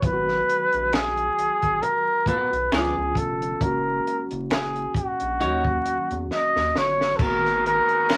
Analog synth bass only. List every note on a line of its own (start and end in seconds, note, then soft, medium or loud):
0.03 0.41 G#1 loud
0.74 1.28 A#1 loud
1.38 1.48 G#1 soft
1.63 1.80 G#1 medium
2.27 2.37 B1 soft
2.52 2.69 B1 medium
2.72 2.93 C#2 loud
2.97 3.13 C#2 medium
3.16 3.54 F1 medium
3.61 3.99 F#1 loud
4.32 4.86 F#1 loud
4.95 5.05 A#1 soft
5.21 5.43 A#1 medium
5.41 5.79 D#2 medium
5.86 5.96 E2 soft
6.11 6.27 E2 medium
6.56 6.72 D#2 medium
6.76 7.13 G1 medium
7.20 7.79 G#1 loud